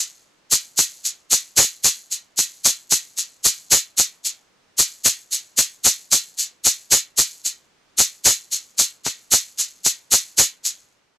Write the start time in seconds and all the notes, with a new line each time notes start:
0.52 shaker
0.78 shaker
1.05 shaker
1.31 shaker
1.57 shaker
1.84 shaker
2.12 shaker
2.38 shaker
2.65 shaker
2.91 shaker
3.18 shaker
3.45 shaker
3.72 shaker
3.98 shaker
4.25 shaker
4.79 shaker
5.05 shaker
5.32 shaker
5.58 shaker
5.85 shaker
6.12 shaker
6.38 shaker
6.65 shaker
6.92 shaker
7.18 shaker
7.45 shaker
7.98 shaker
8.25 shaker
8.52 shaker
8.79 shaker
9.05 shaker
9.32 shaker
9.59 shaker
9.85 shaker
10.12 shaker
10.38 shaker
10.65 shaker